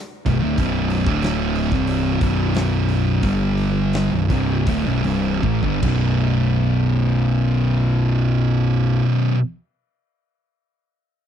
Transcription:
0.26 B0 B1 F#2, kick, open hi-hat
0.43 D1 D2 A2
0.58 B0 B1 F#2 B2, kick, open hi-hat
0.90 snare, open hi-hat
1.06 D1 D2 A2 D3, kick
1.22 snare, open hi-hat
1.55 open hi-hat
1.72 C1 C2 G2 C3, kick, snare
1.87 open hi-hat
2.21 B0 B1 F#2 B2, kick, open hi-hat
2.55 snare, open hi-hat
2.89 open hi-hat
3.23 G1 G2 D3 G3, kick, open hi-hat
3.58 open hi-hat
3.93 snare, open hi-hat
4.12 B0 B1 F#2
4.30 C1 C2 G2 C3, kick, open hi-hat
4.67 D1 D2 A2, kick, open hi-hat
4.86 B0 B1 F#2
5.04 C1 C2 G2 C3, open hi-hat
5.43 A1 A2 E3, kick
5.62 G1 G2 D3, kick
5.81 B0 B1 F#2, kick, crash
5.85 B2

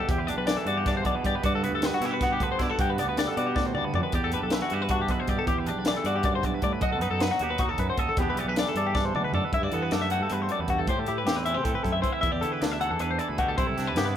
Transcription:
Already playing: E3 D4 G4
0.09 E2 G4, kick, closed hi-hat
0.18 B4
0.27 B1 D4 D5, closed hi-hat
0.36 B1 B4
0.46 E3 D5, snare, closed hi-hat
0.57 A4
0.65 G2 F#4 D5, closed hi-hat
0.77 G4
0.86 D4 D5, kick, snare, closed hi-hat
0.97 C5
1.05 B1 B2 D5, kick, closed hi-hat
1.15 B4
1.24 G2 G4 D5, kick, closed hi-hat
1.35 B4
1.43 G2 F#4 D5, kick, closed hi-hat
1.55 A4
1.62 D2 B3 B4, closed hi-hat
1.71 D2 A4
1.82 G3 B4, snare, closed hi-hat
1.94 F#4
2.00 B2 E4, snare, closed hi-hat
2.05 G4
2.11 F#4 B4
2.21 B3 F#4, kick, snare, closed hi-hat
2.32 G4
2.40 D2 D3 B4, kick, closed hi-hat
2.52 C5
2.59 B2 E4 D5, kick, snare, closed hi-hat
2.69 F#4 A4
2.78 G2 F#4 G4, kick, closed hi-hat
2.90 B4
2.98 D2 B3 D5, closed hi-hat
3.07 D2 B4
3.17 G3 D5, snare, closed hi-hat
3.28 A4
3.37 B2 F#4 D5, closed hi-hat
3.47 G4
3.56 A2 D5, kick, snare
3.66 C5
3.74 D2 G2 D5, mid tom
3.85 B4
3.93 F2 F#2 D5, floor tom
4.03 B4
4.12 E2 G4 D5, kick, closed hi-hat
4.24 A4
4.32 B1 D4 B4, closed hi-hat
4.42 B1 A4
4.50 E3 B4, snare, closed hi-hat
4.62 F#4
4.70 G2 F#4 G4, closed hi-hat
4.82 B4
4.89 D4 F#4, kick, closed hi-hat
5.01 G4
5.08 B1 B2 B4, kick, closed hi-hat
5.20 C5
5.27 G2 G4 D5, kick, closed hi-hat
5.39 A4
5.46 E2 G4, kick, closed hi-hat
5.58 B4
5.66 B1 D4 D5, closed hi-hat
5.76 B1 B4
5.85 E3 D5, snare, closed hi-hat
5.97 A4
6.04 G2 F#4 D5, closed hi-hat
6.15 G4
6.23 F#2 D5, kick, closed hi-hat
6.35 C5
6.42 B1 G2 D5, kick, closed hi-hat
6.54 B4
6.62 G2 A2 D5, kick, closed hi-hat
6.73 B4
6.81 B1 B2 F#4 D#5, kick, closed hi-hat
6.92 A4
7.00 F#2 D#4 B4, closed hi-hat
7.10 F#2 A4
7.19 F#3 B4, snare, closed hi-hat
7.31 F#4
7.39 D#2 F#4 G4, closed hi-hat
7.50 B4
7.58 D#4 F#4, kick, closed hi-hat
7.69 A4
7.78 F#2 B4, kick, closed hi-hat
7.90 C5
7.97 D#2 A4 D#5, kick, closed hi-hat
8.09 A4
8.17 E2 E3 B3 G4, kick, closed hi-hat
8.21 D4 G4
8.30 B4
8.36 B1 B3 D5, closed hi-hat
8.45 B1 B4
8.49 D4
8.56 E3 D5, snare, closed hi-hat
8.69 A4
8.75 G2 A4 D5, closed hi-hat
8.87 G4
8.95 D4 D5, kick, snare
9.05 C5
9.14 B1 B2 D5, mid tom
9.24 B4
9.32 F#2 A4 D5, floor tom
9.45 B4
9.52 G2 E4 E5, kick, closed hi-hat
9.61 G2 F#4 D5
9.72 E3 B3 A4, closed hi-hat
9.82 B4
9.91 F#2 A3 D5, snare, closed hi-hat
10.02 E5
10.10 G3 F#4 F#5, closed hi-hat
10.20 G2 A4
10.30 E2 G2 B4, closed hi-hat
10.42 C5
10.49 F#2 D5, closed hi-hat
10.59 E2 B4
10.68 G2 F#4, kick, closed hi-hat
10.79 A4
10.87 A2 G4 C5, kick, closed hi-hat
10.98 A2 A4
11.06 A2 E4 G4, closed hi-hat
11.18 B4
11.27 E2 C4 G4, snare, closed hi-hat
11.36 B4
11.45 E3 E4 E5, closed hi-hat
11.54 C3 G4 C5
11.63 A2 C4 A4, kick, closed hi-hat
11.75 B4
11.83 F#2 E4 A4, kick, closed hi-hat
11.92 E5
12.02 E3 E4 C5, kick, closed hi-hat
12.12 E5
12.21 E2 E4 E5, kick, closed hi-hat
12.32 E2 G4 D5
12.41 D3 E4 A4, closed hi-hat
12.52 B4
12.61 D2 D4 D5, snare, closed hi-hat
12.72 E5
12.80 E3 A4 F#5, closed hi-hat
12.90 E2 A4
12.99 E2 D4 B4, closed hi-hat
13.11 C5
13.19 E4 D5, closed hi-hat
13.28 D2 B4
13.38 B2 F#4 G4, kick, closed hi-hat
13.48 A4
13.57 C2 C3 E4 C5, kick, closed hi-hat
13.67 C2 A4
13.77 C2 D4 G4, snare, closed hi-hat
13.87 B4
13.96 G2 B3 G4, snare, closed hi-hat
14.06 B4

